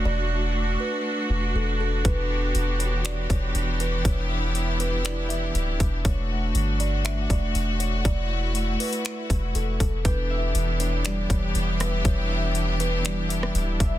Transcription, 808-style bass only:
X:1
M:4/4
L:1/8
Q:1/4=120
K:Edor
V:1 name="808-style bass" clef=bass
E,,,3 z2 E,,, E,,,2 | E,,,2 E,,,3 E,,, E,,,2 | E,,,6 D,,, E,,, | E,,,2 G,,,3 E,,, E,,,2 |
E,,,3 z2 E,,, E,,, E,,, | E,,,2 E,,,3 E,,, E,,,2 | E,,,6 D,,, E,,, |]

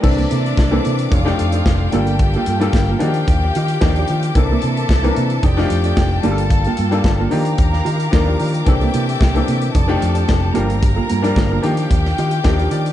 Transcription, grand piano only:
X:1
M:4/4
L:1/16
Q:1/4=111
K:Cdor
V:1 name="Grand piano"
[=E,B,CDA]3 z2 [E,B,CDA]2 z2 [F,A,D_EG]3 z2 [G,B,DFA]2- | [G,B,DFA]2 z [G,B,DFA]2 z [F,B,DE^FG]4- [=F,B,DE^FG] z [=F,B,DEG]2 z2 | [=E,B,CDA]3 z2 [E,B,CDB]2 z2 [F,A,D_EFG]3 z2 [G,B,DFGA]2- | [G,B,DFGA]2 z [G,B,DFA]2 z [F,B,DEG]4- [F,B,DEG] z [F,B,DEB]2 z2 |
[=E,B,CDA]3 z2 [E,B,CDA]2 z2 [F,A,D_EG]3 z2 [F,G,B,DG]2- | [F,G,B,DG]2 z [F,G,B,DB]2 z [F,B,DEG]4- [F,B,DEG] z [F,B,DEGg]2 d2 |]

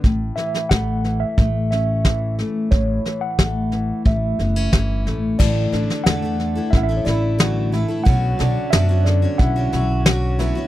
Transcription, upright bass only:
X:1
M:4/4
L:1/16
Q:1/4=90
K:Amix
V:1 name="Upright bass" clef=bass
A,,,2 z2 A,,,4 A,,,8 | A,,,2 z2 A,,,4 A,,,2 F,,,2 G,,,2 A,,,2 | A,,,2 A,,, z E,,4 A,,,2 A,,,6 | B,,,2 B,,, z F,,4 B,,,2 B,,,6 |]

